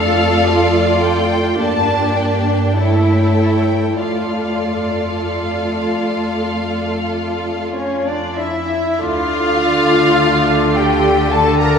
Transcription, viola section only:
0, 0, Header, 1, 2, 480
1, 0, Start_track
1, 0, Key_signature, -1, "minor"
1, 0, Tempo, 1123596
1, 681, Tempo, 1181102
1, 1161, Tempo, 1214575
1, 1640, Time_signature, 4, 2, 24, 8
1, 1641, Tempo, 1252610
1, 3561, Tempo, 1192843
1, 4041, Tempo, 1117318
1, 4726, End_track
2, 0, Start_track
2, 0, Title_t, "Viola section"
2, 0, Program_c, 0, 48
2, 0, Note_on_c, 0, 57, 72
2, 0, Note_on_c, 0, 65, 76
2, 663, Note_off_c, 0, 57, 0
2, 663, Note_off_c, 0, 65, 0
2, 675, Note_on_c, 0, 58, 67
2, 676, Note_on_c, 0, 62, 73
2, 1148, Note_off_c, 0, 62, 0
2, 1157, Note_off_c, 0, 58, 0
2, 1162, Note_on_c, 0, 57, 64
2, 1164, Note_on_c, 0, 64, 72
2, 1636, Note_off_c, 0, 57, 0
2, 1641, Note_off_c, 0, 64, 0
2, 1641, Note_on_c, 0, 57, 53
2, 1642, Note_on_c, 0, 65, 49
2, 3062, Note_off_c, 0, 57, 0
2, 3062, Note_off_c, 0, 65, 0
2, 3084, Note_on_c, 0, 61, 61
2, 3192, Note_off_c, 0, 61, 0
2, 3203, Note_on_c, 0, 62, 60
2, 3323, Note_off_c, 0, 62, 0
2, 3326, Note_on_c, 0, 64, 61
2, 3564, Note_off_c, 0, 64, 0
2, 3568, Note_on_c, 0, 65, 83
2, 4288, Note_off_c, 0, 65, 0
2, 4289, Note_on_c, 0, 67, 75
2, 4523, Note_on_c, 0, 69, 81
2, 4525, Note_off_c, 0, 67, 0
2, 4641, Note_off_c, 0, 69, 0
2, 4643, Note_on_c, 0, 70, 80
2, 4726, Note_off_c, 0, 70, 0
2, 4726, End_track
0, 0, End_of_file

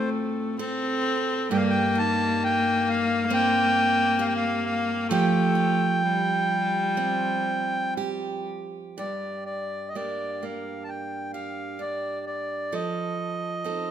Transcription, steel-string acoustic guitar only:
0, 0, Header, 1, 2, 480
1, 0, Start_track
1, 0, Key_signature, -2, "minor"
1, 0, Tempo, 906344
1, 792, Time_signature, 4, 2, 24, 8
1, 3188, Tempo, 952381
1, 3668, Tempo, 995025
1, 5108, Tempo, 925926
1, 7157, End_track
2, 0, Start_track
2, 0, Title_t, "Steel-string acoustic guitar"
2, 0, Program_c, 0, 25
2, 0, Note_on_c, 0, 45, 71
2, 0, Note_on_c, 0, 60, 62
2, 0, Note_on_c, 0, 65, 51
2, 0, Note_on_c, 0, 69, 70
2, 308, Note_off_c, 0, 69, 0
2, 314, Note_on_c, 0, 69, 67
2, 788, Note_off_c, 0, 45, 0
2, 792, Note_off_c, 0, 69, 0
2, 799, Note_on_c, 0, 43, 75
2, 802, Note_on_c, 0, 67, 54
2, 835, Note_off_c, 0, 65, 0
2, 1034, Note_on_c, 0, 63, 51
2, 1681, Note_off_c, 0, 60, 0
2, 1750, Note_on_c, 0, 60, 70
2, 2217, Note_off_c, 0, 67, 0
2, 2220, Note_on_c, 0, 67, 60
2, 2705, Note_off_c, 0, 43, 0
2, 2705, Note_on_c, 0, 53, 83
2, 2709, Note_off_c, 0, 67, 0
2, 2711, Note_on_c, 0, 67, 63
2, 2752, Note_off_c, 0, 63, 0
2, 2940, Note_on_c, 0, 65, 48
2, 3583, Note_off_c, 0, 60, 0
2, 3667, Note_on_c, 0, 60, 57
2, 4149, Note_off_c, 0, 67, 0
2, 4151, Note_on_c, 0, 67, 58
2, 4635, Note_on_c, 0, 43, 58
2, 4639, Note_off_c, 0, 67, 0
2, 4641, Note_on_c, 0, 67, 45
2, 4649, Note_off_c, 0, 53, 0
2, 4682, Note_off_c, 0, 65, 0
2, 4683, Note_off_c, 0, 60, 0
2, 5103, Note_off_c, 0, 67, 0
2, 5106, Note_on_c, 0, 58, 39
2, 5109, Note_on_c, 0, 67, 45
2, 5110, Note_on_c, 0, 62, 35
2, 5345, Note_off_c, 0, 58, 0
2, 5351, Note_on_c, 0, 58, 43
2, 5820, Note_off_c, 0, 67, 0
2, 5826, Note_on_c, 0, 67, 48
2, 6052, Note_off_c, 0, 62, 0
2, 6058, Note_on_c, 0, 62, 43
2, 6542, Note_off_c, 0, 67, 0
2, 6543, Note_on_c, 0, 53, 58
2, 6544, Note_on_c, 0, 69, 47
2, 6548, Note_off_c, 0, 43, 0
2, 6589, Note_off_c, 0, 62, 0
2, 6594, Note_off_c, 0, 58, 0
2, 7019, Note_off_c, 0, 69, 0
2, 7020, Note_on_c, 0, 60, 42
2, 7023, Note_on_c, 0, 63, 44
2, 7026, Note_on_c, 0, 69, 49
2, 7157, Note_off_c, 0, 53, 0
2, 7157, Note_off_c, 0, 60, 0
2, 7157, Note_off_c, 0, 63, 0
2, 7157, Note_off_c, 0, 69, 0
2, 7157, End_track
0, 0, End_of_file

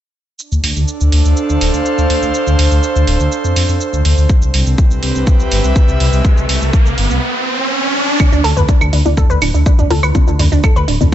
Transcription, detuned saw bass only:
0, 0, Header, 1, 2, 480
1, 0, Start_track
1, 0, Tempo, 487805
1, 386, Time_signature, 4, 2, 24, 8
1, 10968, End_track
2, 0, Start_track
2, 0, Title_t, "Detuned saw bass"
2, 0, Program_c, 0, 39
2, 510, Note_on_c, 0, 38, 78
2, 590, Note_off_c, 0, 38, 0
2, 626, Note_on_c, 0, 38, 91
2, 712, Note_off_c, 0, 38, 0
2, 750, Note_on_c, 0, 38, 92
2, 830, Note_off_c, 0, 38, 0
2, 990, Note_on_c, 0, 38, 84
2, 1070, Note_off_c, 0, 38, 0
2, 1106, Note_on_c, 0, 38, 91
2, 1192, Note_off_c, 0, 38, 0
2, 1230, Note_on_c, 0, 38, 84
2, 1310, Note_off_c, 0, 38, 0
2, 1471, Note_on_c, 0, 38, 85
2, 1551, Note_off_c, 0, 38, 0
2, 1586, Note_on_c, 0, 26, 98
2, 1672, Note_off_c, 0, 26, 0
2, 1710, Note_on_c, 0, 38, 88
2, 1790, Note_off_c, 0, 38, 0
2, 1950, Note_on_c, 0, 38, 82
2, 2030, Note_off_c, 0, 38, 0
2, 2066, Note_on_c, 0, 38, 93
2, 2152, Note_off_c, 0, 38, 0
2, 2190, Note_on_c, 0, 38, 89
2, 2270, Note_off_c, 0, 38, 0
2, 2430, Note_on_c, 0, 38, 80
2, 2510, Note_off_c, 0, 38, 0
2, 2545, Note_on_c, 0, 38, 90
2, 2632, Note_off_c, 0, 38, 0
2, 2670, Note_on_c, 0, 38, 90
2, 2750, Note_off_c, 0, 38, 0
2, 2909, Note_on_c, 0, 38, 82
2, 2990, Note_off_c, 0, 38, 0
2, 3025, Note_on_c, 0, 26, 98
2, 3112, Note_off_c, 0, 26, 0
2, 3149, Note_on_c, 0, 38, 90
2, 3230, Note_off_c, 0, 38, 0
2, 3389, Note_on_c, 0, 41, 82
2, 3470, Note_off_c, 0, 41, 0
2, 3505, Note_on_c, 0, 41, 99
2, 3592, Note_off_c, 0, 41, 0
2, 3629, Note_on_c, 0, 41, 88
2, 3710, Note_off_c, 0, 41, 0
2, 3868, Note_on_c, 0, 38, 83
2, 3950, Note_off_c, 0, 38, 0
2, 3984, Note_on_c, 0, 38, 93
2, 4071, Note_off_c, 0, 38, 0
2, 4108, Note_on_c, 0, 38, 85
2, 4189, Note_off_c, 0, 38, 0
2, 4349, Note_on_c, 0, 36, 77
2, 4430, Note_off_c, 0, 36, 0
2, 4465, Note_on_c, 0, 36, 96
2, 4551, Note_off_c, 0, 36, 0
2, 4589, Note_on_c, 0, 36, 85
2, 4670, Note_off_c, 0, 36, 0
2, 4829, Note_on_c, 0, 36, 82
2, 4910, Note_off_c, 0, 36, 0
2, 4946, Note_on_c, 0, 36, 96
2, 5032, Note_off_c, 0, 36, 0
2, 5070, Note_on_c, 0, 36, 86
2, 5150, Note_off_c, 0, 36, 0
2, 5309, Note_on_c, 0, 36, 85
2, 5390, Note_off_c, 0, 36, 0
2, 5425, Note_on_c, 0, 31, 99
2, 5512, Note_off_c, 0, 31, 0
2, 5549, Note_on_c, 0, 36, 93
2, 5630, Note_off_c, 0, 36, 0
2, 5789, Note_on_c, 0, 36, 84
2, 5870, Note_off_c, 0, 36, 0
2, 5906, Note_on_c, 0, 36, 96
2, 5992, Note_off_c, 0, 36, 0
2, 6030, Note_on_c, 0, 36, 93
2, 6110, Note_off_c, 0, 36, 0
2, 6270, Note_on_c, 0, 36, 81
2, 6350, Note_off_c, 0, 36, 0
2, 6385, Note_on_c, 0, 36, 95
2, 6472, Note_off_c, 0, 36, 0
2, 6511, Note_on_c, 0, 36, 91
2, 6591, Note_off_c, 0, 36, 0
2, 6749, Note_on_c, 0, 36, 85
2, 6830, Note_off_c, 0, 36, 0
2, 6866, Note_on_c, 0, 31, 96
2, 6952, Note_off_c, 0, 31, 0
2, 6990, Note_on_c, 0, 36, 90
2, 7070, Note_off_c, 0, 36, 0
2, 8190, Note_on_c, 0, 38, 79
2, 8271, Note_off_c, 0, 38, 0
2, 8306, Note_on_c, 0, 38, 96
2, 8392, Note_off_c, 0, 38, 0
2, 8430, Note_on_c, 0, 38, 88
2, 8511, Note_off_c, 0, 38, 0
2, 8670, Note_on_c, 0, 38, 80
2, 8751, Note_off_c, 0, 38, 0
2, 8786, Note_on_c, 0, 38, 98
2, 8872, Note_off_c, 0, 38, 0
2, 8911, Note_on_c, 0, 38, 90
2, 8991, Note_off_c, 0, 38, 0
2, 9150, Note_on_c, 0, 38, 89
2, 9231, Note_off_c, 0, 38, 0
2, 9266, Note_on_c, 0, 26, 100
2, 9352, Note_off_c, 0, 26, 0
2, 9389, Note_on_c, 0, 38, 90
2, 9470, Note_off_c, 0, 38, 0
2, 9629, Note_on_c, 0, 38, 83
2, 9710, Note_off_c, 0, 38, 0
2, 9745, Note_on_c, 0, 38, 95
2, 9832, Note_off_c, 0, 38, 0
2, 9869, Note_on_c, 0, 38, 86
2, 9950, Note_off_c, 0, 38, 0
2, 10110, Note_on_c, 0, 38, 82
2, 10190, Note_off_c, 0, 38, 0
2, 10225, Note_on_c, 0, 38, 95
2, 10312, Note_off_c, 0, 38, 0
2, 10349, Note_on_c, 0, 38, 91
2, 10430, Note_off_c, 0, 38, 0
2, 10590, Note_on_c, 0, 38, 84
2, 10670, Note_off_c, 0, 38, 0
2, 10706, Note_on_c, 0, 26, 96
2, 10792, Note_off_c, 0, 26, 0
2, 10830, Note_on_c, 0, 38, 85
2, 10911, Note_off_c, 0, 38, 0
2, 10968, End_track
0, 0, End_of_file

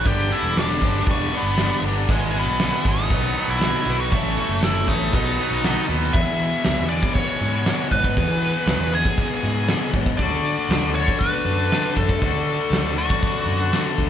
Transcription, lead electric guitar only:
0, 0, Header, 1, 2, 480
1, 0, Start_track
1, 0, Tempo, 505902
1, 61, Time_signature, 4, 2, 24, 8
1, 13374, End_track
2, 0, Start_track
2, 0, Title_t, "Lead electric guitar"
2, 0, Program_c, 0, 29
2, 63, Note_on_c, 0, 67, 96
2, 303, Note_off_c, 0, 67, 0
2, 305, Note_on_c, 0, 64, 102
2, 546, Note_off_c, 0, 64, 0
2, 550, Note_on_c, 0, 62, 98
2, 995, Note_off_c, 0, 62, 0
2, 1051, Note_on_c, 0, 61, 90
2, 1263, Note_off_c, 0, 61, 0
2, 1294, Note_on_c, 0, 59, 85
2, 1728, Note_off_c, 0, 59, 0
2, 2006, Note_on_c, 0, 56, 84
2, 2244, Note_off_c, 0, 56, 0
2, 2271, Note_on_c, 0, 59, 82
2, 2726, Note_on_c, 0, 63, 102
2, 2744, Note_off_c, 0, 59, 0
2, 3322, Note_off_c, 0, 63, 0
2, 3325, Note_on_c, 0, 64, 97
2, 3799, Note_off_c, 0, 64, 0
2, 3803, Note_on_c, 0, 66, 95
2, 3899, Note_off_c, 0, 66, 0
2, 3911, Note_on_c, 0, 66, 106
2, 4357, Note_off_c, 0, 66, 0
2, 4410, Note_on_c, 0, 64, 102
2, 4635, Note_off_c, 0, 64, 0
2, 4638, Note_on_c, 0, 63, 99
2, 5556, Note_off_c, 0, 63, 0
2, 5819, Note_on_c, 0, 76, 107
2, 6534, Note_off_c, 0, 76, 0
2, 6538, Note_on_c, 0, 74, 104
2, 6772, Note_off_c, 0, 74, 0
2, 6775, Note_on_c, 0, 73, 112
2, 7463, Note_off_c, 0, 73, 0
2, 7513, Note_on_c, 0, 71, 88
2, 8484, Note_off_c, 0, 71, 0
2, 8488, Note_on_c, 0, 68, 82
2, 9398, Note_off_c, 0, 68, 0
2, 9653, Note_on_c, 0, 74, 122
2, 10341, Note_off_c, 0, 74, 0
2, 10390, Note_on_c, 0, 73, 115
2, 10611, Note_off_c, 0, 73, 0
2, 10615, Note_on_c, 0, 71, 108
2, 11352, Note_off_c, 0, 71, 0
2, 11355, Note_on_c, 0, 69, 93
2, 12314, Note_on_c, 0, 66, 76
2, 12338, Note_off_c, 0, 69, 0
2, 13230, Note_off_c, 0, 66, 0
2, 13374, End_track
0, 0, End_of_file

